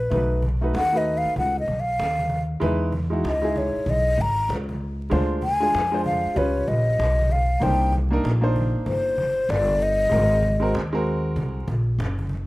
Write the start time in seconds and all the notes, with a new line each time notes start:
Already playing: B4
0.00 cajon slap
0.10 B1 A3 D#4 F#4 B4, cajon bass
0.42 cajon bass, cajon slap
0.61 A3 D#4 F#4 B4, cajon slap
0.74 D#2 F#5, cajon slap
0.92 A3 D#4 F#4 B4
0.97 D#5
1.06 cajon slap
1.18 F5
1.25 muted upright bass stroke
1.36 C#2 F#5, cajon bass
1.60 D#5
1.68 B1, cajon bass
1.80 F5
1.88 cajon slap
1.99 D#2, cajon slap
2.19 cajon bass
2.29 cajon bass
2.50 cajon slap
2.60 E2 G#3 D#4 E4 B4, cajon bass
2.92 cajon bass, cajon slap
3.10 G#3 D#4 E4 F#4, cajon slap
3.24 C#2 D#5, cajon slap
3.42 G#3 D#4 E4 G#4
3.56 C#5, cajon bass, cajon slap
3.75 muted upright bass stroke, cajon slap
3.86 B1 D#5, cajon bass
4.18 G#1 A#5, cajon bass
4.38 cajon slap
4.49 C#2, cajon slap
4.69 cajon bass
5.00 cajon slap
5.10 D2 G#3 D4 F4 C5, cajon bass
5.42 G#5, cajon bass, cajon slap
5.60 G#3 D4 F4 G#4, cajon slap
5.74 F2, cajon slap
5.92 G#3 D4 F4 C5
6.05 F5, cajon bass, cajon slap
6.25 muted upright bass stroke, cajon slap
6.34 C#2 G3 C#4 F4 B4 C#5, cajon bass
6.68 A#1 D#5, cajon bass
6.88 cajon slap
6.99 B1, cajon slap
7.19 cajon bass
7.29 F5, cajon bass
7.50 cajon slap
7.60 C2 A#3 D4 D#4 C5 G5, cajon bass
7.92 cajon bass, cajon slap
8.10 A#3 D4 D#4 A#4, cajon slap
8.24 A#1, cajon slap
8.41 A#3 D4 D#4 C5
8.56 cajon bass, cajon slap
8.75 muted upright bass stroke, cajon slap
8.86 G1 C5, cajon bass
9.18 cajon bass
9.38 cajon slap
9.49 G1 D5, cajon slap
9.69 cajon bass
9.82 D#5
10.00 cajon slap
10.09 G#1 G#3 C4 F#4 A#4, cajon bass
10.42 cajon bass, cajon slap
10.60 G#3 C4 F#4 A#4
10.74 D#2, cajon slap
10.93 G#3 C4 F#4 A#4
11.07 cajon slap
11.25 cajon slap
11.36 C2, cajon bass
11.68 A#1, cajon bass
11.88 cajon slap
11.98 F#1, cajon slap
12.19 cajon bass
12.29 cajon bass